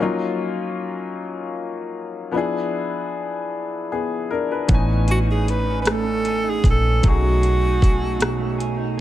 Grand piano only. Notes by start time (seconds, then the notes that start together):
Already playing: A#3
0.00 F#3 C#4 D#4 F4
2.31 F3 B3 D4
2.36 E4 G#4
3.92 B3 G#4
4.31 D4 A#4
4.51 D4 B4
4.68 E3 B3 C#4
4.73 D#4 G#5
7.03 F#3 A3 C#4
7.08 D#4 G#4